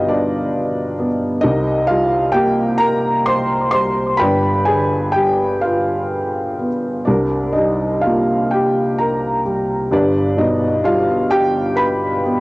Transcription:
0.00 1.39 G1 medium
0.00 1.40 G2 medium
0.00 0.95 B2 medium
0.00 1.39 G3 soft
0.00 1.43 D#4 medium
0.00 1.45 F4 medium
0.00 1.42 G4 medium
0.00 0.09 B4 medium
0.00 0.08 D5 medium
0.00 1.41 D#5 medium
0.00 1.45 F5 medium
0.00 1.45 G5 medium
0.08 1.06 D4 medium
0.08 1.06 B4 medium
0.08 1.06 D5 medium
0.99 1.42 B3 medium
1.41 4.16 C2 medium
1.41 4.16 C3 medium
1.41 1.85 D#4 medium
1.41 1.85 G4 medium
1.41 1.85 A#4 medium
1.41 1.88 D#5 medium
1.87 3.69 G3 medium
1.87 2.31 F4 medium
1.87 2.34 F5 medium
2.32 4.16 A#3 medium
2.32 2.76 G4 medium
2.32 2.80 G5 medium
2.78 3.23 A#4 medium
2.78 3.22 A#5 loud
3.26 3.70 C5 medium
3.26 3.70 C6 loud
3.71 4.18 G3 soft
3.71 4.16 C5 medium
3.71 4.15 C6 loud
4.17 7.03 G1 medium
4.17 7.03 G2 medium
4.17 4.63 B4 medium
4.17 4.63 D5 medium
4.17 4.63 G5 medium
4.17 4.67 B5 loud
4.65 6.55 D3 medium
4.65 5.11 G#4 medium
4.65 5.15 G#5 medium
5.12 5.59 G4 medium
5.12 5.62 G5 medium
5.16 7.04 G3 soft
5.61 6.67 F4 medium
5.61 6.67 B4 medium
5.61 6.66 F5 medium
6.59 7.06 B3 soft
7.05 9.88 C2 soft
7.05 9.88 C3 soft
7.05 7.52 D4 medium
7.05 7.52 G4 medium
7.05 7.52 A#4 medium
7.05 7.51 D5 medium
7.53 8.00 D#4 medium
7.53 8.03 D#5 medium
7.57 9.42 G3 soft
8.01 8.48 F4 medium
8.01 8.46 F5 medium
8.06 9.89 A#3 soft
8.51 8.96 G4 medium
8.51 8.99 G5 medium
8.99 9.43 A#4 medium
8.99 9.42 A#5 medium
9.46 9.90 G3 soft
9.91 12.40 G1 medium
9.91 12.40 G2 medium
9.91 10.35 D4 medium
9.91 10.35 G4 medium
9.91 10.35 B4 medium
9.91 10.40 D5 medium
10.37 12.21 B2 medium
10.37 10.82 D#4 medium
10.37 10.82 D#5 medium
10.84 12.40 G3 medium
10.84 11.28 F4 medium
10.84 11.33 F5 medium
11.30 11.74 G4 medium
11.30 11.75 G5 loud
11.76 12.20 B4 medium
11.76 12.21 B5 medium
12.26 12.40 B3 medium

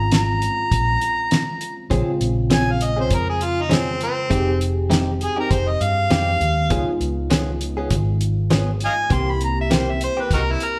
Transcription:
0.00 0.48 G#1 loud
0.00 1.87 G#3 medium
0.00 1.88 C4 medium
0.00 1.88 C#4 medium
0.00 1.88 F4 medium
0.00 0.12 A#5 medium
0.12 1.89 A#5 loud
0.12 snare loud
0.12 closed hi-hat medium
0.42 closed hi-hat medium
0.71 0.96 A#1 medium
0.71 kick medium
0.71 closed hi-hat medium
1.01 closed hi-hat medium
1.31 snare loud
1.31 closed hi-hat medium
1.61 closed hi-hat medium
1.90 2.04 A#1 loud
1.90 4.28 C#3 medium
1.90 2.10 F3 medium
1.90 4.27 G#3 medium
1.90 2.11 C4 medium
1.90 4.27 C4 medium
1.90 2.11 C#4 medium
1.90 4.28 F4 medium
1.90 2.11 G#4 medium
1.90 kick loud
1.90 closed hi-hat medium
2.21 3.11 A#1 medium
2.21 closed hi-hat medium
2.50 2.70 F3 medium
2.50 2.71 C4 medium
2.50 2.71 C#4 medium
2.50 2.71 G#4 medium
2.50 2.73 G#5 medium
2.50 snare loud
2.50 closed hi-hat medium
2.71 2.85 F5 medium
2.81 2.98 D#5 medium
2.81 closed hi-hat medium
2.97 3.15 C4 soft
2.97 3.14 C#4 soft
2.97 3.14 G#4 soft
2.97 3.16 C5 medium
3.11 4.07 F2 medium
3.11 3.29 A#4 medium
3.11 kick medium
3.11 closed hi-hat medium
3.30 3.46 G#4 medium
3.41 3.63 F4 medium
3.41 closed hi-hat medium
3.62 3.76 D#4 medium
3.70 3.90 F3 medium
3.70 3.90 C4 medium
3.70 3.90 C#4 medium
3.70 3.91 G#4 medium
3.70 snare loud
3.70 closed hi-hat medium
3.74 4.02 C4 medium
4.01 4.61 C4 loud
4.01 closed hi-hat medium
4.30 5.27 F1 loud
4.30 4.50 G#3 medium
4.30 4.50 C4 medium
4.30 6.08 C4 medium
4.30 4.50 D#4 medium
4.30 6.08 D#4 medium
4.30 4.51 G4 medium
4.30 6.08 G4 medium
4.30 6.07 G#4 medium
4.30 kick loud
4.30 closed hi-hat medium
4.61 closed hi-hat medium
4.90 5.10 G#3 medium
4.90 5.10 C4 medium
4.90 5.10 D#4 medium
4.90 5.10 G4 medium
4.90 snare loud
4.90 closed hi-hat medium
5.21 5.38 G#4 medium
5.21 closed hi-hat medium
5.36 5.55 C4 soft
5.36 5.54 D#4 soft
5.36 5.54 G4 medium
5.36 5.53 A#4 medium
5.50 5.75 F1 medium
5.50 5.71 C5 medium
5.50 kick medium
5.50 closed hi-hat medium
5.69 5.84 D#5 medium
5.81 6.08 G2 medium
5.81 6.98 F5 loud
5.81 closed hi-hat medium
6.10 6.38 F2 medium
6.10 6.30 G#3 medium
6.10 6.69 G#3 soft
6.10 6.30 C4 medium
6.10 6.71 C4 soft
6.10 6.30 D#4 medium
6.10 6.71 D#4 soft
6.10 6.31 G4 medium
6.10 6.72 G4 soft
6.10 snare loud
6.10 closed hi-hat medium
6.41 6.68 D#2 medium
6.41 closed hi-hat medium
6.70 6.84 C#2 loud
6.70 6.90 F3 medium
6.70 9.06 G#3 medium
6.70 6.90 B3 medium
6.70 9.07 B3 medium
6.70 6.91 C#4 medium
6.70 9.07 D#4 medium
6.70 9.08 F4 medium
6.70 6.91 G#4 medium
6.70 kick loud
6.70 closed hi-hat medium
6.88 muted fingered electric bass stroke soft
7.00 7.92 C#2 medium
7.00 closed hi-hat medium
7.30 7.50 F3 medium
7.30 7.50 B3 medium
7.30 7.51 C#4 medium
7.30 7.51 G#4 medium
7.30 snare loud
7.30 closed hi-hat medium
7.61 closed hi-hat medium
7.77 7.95 B3 soft
7.77 7.94 C#4 medium
7.77 7.94 G#4 medium
7.90 8.87 G#1 medium
7.90 kick medium
7.90 closed hi-hat medium
8.21 closed hi-hat medium
8.50 8.70 F3 medium
8.50 8.70 B3 loud
8.50 8.71 C#4 loud
8.50 8.71 G#4 medium
8.50 snare loud
8.50 closed hi-hat medium
8.80 closed hi-hat medium
8.85 8.94 D#5 medium
8.85 8.92 F5 medium
8.85 9.15 G#5 loud
9.10 10.07 C2 loud
9.10 9.30 E3 medium
9.10 10.79 A#3 medium
9.10 9.30 A#3 medium
9.10 10.79 C4 medium
9.10 9.30 C4 medium
9.10 10.79 E4 medium
9.10 9.30 G4 medium
9.10 10.79 G4 medium
9.10 9.33 C6 medium
9.10 kick loud
9.10 closed hi-hat medium
9.31 9.42 B5 medium
9.41 9.58 A#5 medium
9.41 closed hi-hat medium
9.61 9.76 E5 medium
9.70 9.90 E3 medium
9.70 9.90 A#3 medium
9.70 9.90 C4 medium
9.70 9.91 G4 medium
9.70 snare loud
9.70 closed hi-hat medium
9.74 9.93 C5 medium
9.91 10.02 E5 medium
10.01 10.23 C5 loud
10.01 closed hi-hat medium
10.17 10.35 A#3 soft
10.17 10.34 C4 medium
10.17 10.34 G4 medium
10.21 10.32 B4 medium
10.30 10.55 C2 medium
10.30 10.41 D#4 medium
10.30 10.41 F#4 medium
10.30 10.54 A#4 medium
10.30 kick medium
10.30 closed hi-hat medium
10.52 10.66 E4 loud
10.60 closed hi-hat medium
10.65 10.79 A#4 medium

